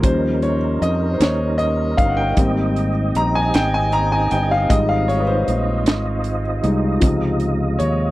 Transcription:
0.02 0.78 D#2 loud
0.02 0.55 F3 soft
0.02 0.55 G3 soft
0.02 2.35 G3 medium
0.02 0.55 C#4 medium
0.02 2.35 C#4 medium
0.02 6.98 D#4 medium
0.02 2.35 A#4 medium
0.02 0.40 C5 medium
0.02 kick medium
0.02 closed hi-hat medium
0.42 0.83 C#5 medium
0.42 closed hi-hat soft
0.82 1.17 F2 medium
0.82 0.89 D#5 medium
0.82 closed hi-hat medium
1.13 1.20 C5 medium
1.20 1.94 D#2 medium
1.20 1.61 C#5 medium
1.20 snare loud
1.20 closed hi-hat medium
1.58 1.95 D#5 medium
1.58 closed hi-hat soft
1.97 2.34 G1 medium
1.97 2.11 F5 medium
1.97 kick medium
1.97 closed hi-hat soft
2.10 2.17 F#5 medium
2.17 2.53 G5 medium
2.37 3.11 G#1 loud
2.37 2.88 G3 medium
2.37 2.89 A#3 soft
2.37 6.99 C4 medium
2.37 2.89 C4 medium
2.37 4.68 G4 medium
2.37 8.11 D#5 medium
2.37 kick medium
2.37 closed hi-hat medium
2.76 closed hi-hat soft
3.15 3.51 A#1 medium
3.15 3.35 A#5 medium
3.15 closed hi-hat medium
3.35 3.55 G#5 medium
3.54 4.27 G#1 medium
3.54 3.74 G5 medium
3.54 snare loud
3.54 closed hi-hat medium
3.74 3.93 G#5 medium
3.92 4.13 A#5 loud
3.92 closed hi-hat soft
4.12 4.30 G#5 medium
4.31 4.67 G1 medium
4.31 4.51 G5 medium
4.31 closed hi-hat soft
4.51 4.71 F5 medium
4.69 5.44 G#1 loud
4.69 5.21 G3 soft
4.69 5.21 G#3 soft
4.69 5.21 D#4 medium
4.69 8.11 F4 medium
4.69 4.88 D#5 medium
4.69 kick medium
4.69 closed hi-hat medium
4.89 5.07 F5 medium
5.08 5.20 C#5 medium
5.08 closed hi-hat soft
5.20 5.28 B4 medium
5.27 6.40 C5 medium
5.48 5.86 A#1 medium
5.48 closed hi-hat medium
5.86 6.60 G#1 medium
5.86 snare loud
5.86 closed hi-hat medium
6.24 closed hi-hat medium
6.63 6.99 C2 medium
6.63 6.98 G3 soft
6.63 6.99 G#3 soft
6.63 6.99 D#4 medium
6.63 closed hi-hat medium
7.00 7.76 C#2 loud
7.00 8.11 C3 soft
7.00 8.11 F3 medium
7.00 8.11 G#3 medium
7.00 8.11 D#4 medium
7.00 kick medium
7.00 closed hi-hat medium
7.40 closed hi-hat soft
7.79 8.11 D#2 medium
7.79 7.88 C#5 medium
7.79 closed hi-hat medium

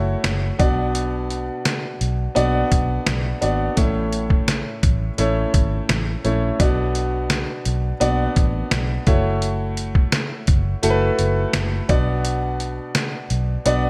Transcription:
0.00 0.15 F#1 medium
0.00 0.53 A3 medium
0.00 0.53 E4 medium
0.00 0.53 F#4 medium
0.00 0.54 C#5 medium
0.24 0.50 F#1 medium
0.24 snare loud
0.24 closed hi-hat medium
0.59 1.49 B1 medium
0.59 1.61 B2 medium
0.59 1.92 B3 medium
0.59 1.92 D4 medium
0.59 1.92 F#4 medium
0.59 1.93 D5 medium
0.59 kick loud
0.59 closed hi-hat medium
0.95 closed hi-hat medium
1.30 closed hi-hat medium
1.65 snare loud
1.65 closed hi-hat medium
2.01 2.26 B1 medium
2.01 closed hi-hat medium
2.35 2.62 B1 medium
2.35 3.35 B3 medium
2.35 3.35 D4 medium
2.35 3.36 F#4 medium
2.35 3.36 D5 medium
2.35 closed hi-hat medium
2.72 2.97 B1 medium
2.72 kick medium
2.72 closed hi-hat medium
3.07 3.32 B1 medium
3.07 snare loud
3.07 closed hi-hat medium
3.41 3.68 G#1 medium
3.41 3.75 B3 medium
3.41 3.75 D4 medium
3.41 3.75 F#4 medium
3.41 3.76 D5 medium
3.41 closed hi-hat medium
3.76 4.62 A1 medium
3.76 4.79 A2 medium
3.76 5.10 A3 medium
3.76 5.10 C#4 medium
3.76 5.10 E4 medium
3.76 5.10 C#5 medium
3.76 kick loud
3.76 closed hi-hat medium
4.13 closed hi-hat medium
4.30 kick medium
4.48 snare medium
4.48 closed hi-hat medium
4.83 5.09 A1 medium
4.83 kick medium
4.83 closed hi-hat medium
5.18 5.44 A1 medium
5.18 6.18 A3 medium
5.18 6.18 C#4 medium
5.18 6.18 E4 medium
5.18 6.18 C#5 medium
5.18 closed hi-hat medium
5.54 5.80 G#1 medium
5.54 kick medium
5.54 closed hi-hat medium
5.89 6.15 A1 medium
5.89 snare medium
5.89 closed hi-hat medium
6.24 6.50 A#1 medium
6.24 6.58 A3 medium
6.24 6.58 C#4 medium
6.24 6.58 E4 medium
6.24 6.58 C#5 medium
6.24 closed hi-hat medium
6.60 7.44 B1 loud
6.60 7.62 B2 medium
6.60 7.92 B3 medium
6.60 7.93 D4 medium
6.60 7.93 F#4 medium
6.60 7.93 D5 medium
6.60 kick medium
6.60 closed hi-hat medium
6.95 closed hi-hat medium
7.30 snare loud
7.30 closed hi-hat medium
7.65 7.91 B1 loud
7.65 closed hi-hat medium
8.00 8.26 B1 medium
8.00 9.00 B3 medium
8.00 9.00 D4 medium
8.00 9.01 F#4 medium
8.00 9.01 D5 medium
8.00 closed hi-hat medium
8.36 8.62 A1 medium
8.36 kick medium
8.36 closed hi-hat medium
8.71 8.97 B1 medium
8.71 snare loud
8.71 closed hi-hat medium
9.07 9.96 F#1 medium
9.07 10.40 A3 medium
9.07 10.40 E4 medium
9.07 10.40 F#4 medium
9.07 10.40 C#5 medium
9.07 kick loud
9.07 closed hi-hat medium
9.42 closed hi-hat medium
9.77 closed hi-hat medium
9.95 kick medium
10.12 snare loud
10.12 closed hi-hat medium
10.47 10.73 F#1 medium
10.47 kick medium
10.47 closed hi-hat medium
10.83 11.09 F#1 loud
10.83 11.83 A3 medium
10.83 11.83 E4 medium
10.83 11.83 F#4 medium
10.83 10.90 A4 medium
10.83 closed hi-hat medium
10.90 11.86 B4 medium
11.19 11.44 F#1 medium
11.19 closed hi-hat medium
11.53 11.80 F#1 medium
11.53 snare loud
11.53 closed hi-hat medium
11.89 12.78 B1 medium
11.89 12.91 B2 medium
11.89 13.22 B3 medium
11.89 13.22 D4 medium
11.89 13.22 F#4 medium
11.89 13.22 D5 medium
11.89 kick loud
11.89 closed hi-hat medium
12.25 closed hi-hat medium
12.60 closed hi-hat medium
12.95 snare loud
12.95 closed hi-hat medium
13.30 13.56 B1 medium
13.30 closed hi-hat medium
13.66 13.90 B1 medium
13.66 13.90 B3 medium
13.66 13.90 D4 medium
13.66 13.90 F#4 medium
13.66 13.90 D5 medium
13.66 closed hi-hat medium

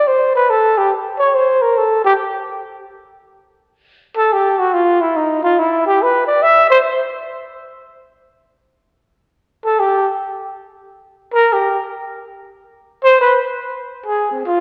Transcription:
0.07 0.34 C5 medium
0.35 0.52 B4 medium
0.50 0.79 A4 medium
0.78 0.92 G4 medium
1.19 1.36 C#5 medium
1.35 1.63 C5 medium
1.62 1.79 A#4 medium
1.78 2.04 A4 medium
2.05 2.13 G4 medium
4.16 4.34 A4 medium
4.33 4.60 G4 medium
4.59 4.75 F#4 medium
4.73 5.02 F4 medium
5.01 5.18 E4 medium
5.16 5.43 D#4 medium
5.43 5.60 F4 medium
5.59 5.85 E4 medium
5.86 6.04 G4 medium
6.02 6.27 B4 medium
6.27 6.44 D5 medium
6.42 6.69 E5 loud
6.70 6.78 C5 medium
9.65 9.81 A4 medium
9.79 10.07 G4 medium
11.34 11.54 A#4 loud
11.53 11.78 G4 medium
13.04 13.17 C5 loud
13.21 13.36 B4 medium
14.06 14.30 G#4 medium
14.32 14.47 C4 soft
14.45 14.60 F4 medium

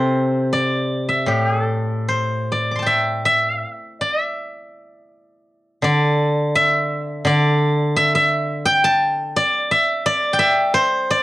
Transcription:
0.00 1.27 C3 medium
0.00 1.27 A4 medium
0.00 1.77 C5 medium
0.00 0.46 E5 medium
0.00 0.46 G5 medium
0.00 0.55 A5 loud
0.53 2.37 D5 medium
1.09 2.81 E5 medium
1.26 3.61 A2 soft
1.26 1.50 G4 medium
1.50 1.63 G#4 medium
1.63 3.47 A4 medium
2.08 4.07 C5 medium
2.52 4.01 D5 medium
2.71 3.93 D6 soft
2.76 4.24 A5 soft
2.76 4.06 C6 soft
2.82 4.38 G5 soft
2.86 3.25 E5 medium
3.25 4.00 E5 medium
4.01 4.21 D5 medium
4.21 5.73 E5 medium
5.82 7.23 D3 medium
5.82 7.26 D5 medium
6.55 7.96 E5 loud
7.25 9.34 D3 medium
7.25 9.11 D5 loud
7.96 8.15 E5 loud
8.15 9.71 E5 loud
8.65 10.21 G5 loud
8.84 10.29 A5 loud
9.36 10.05 D5 loud
9.71 10.38 E5 loud
10.06 11.10 D5 loud
10.33 11.23 G5 medium
10.39 11.23 E5 loud
10.74 11.23 C5 loud
11.11 11.23 D5 loud

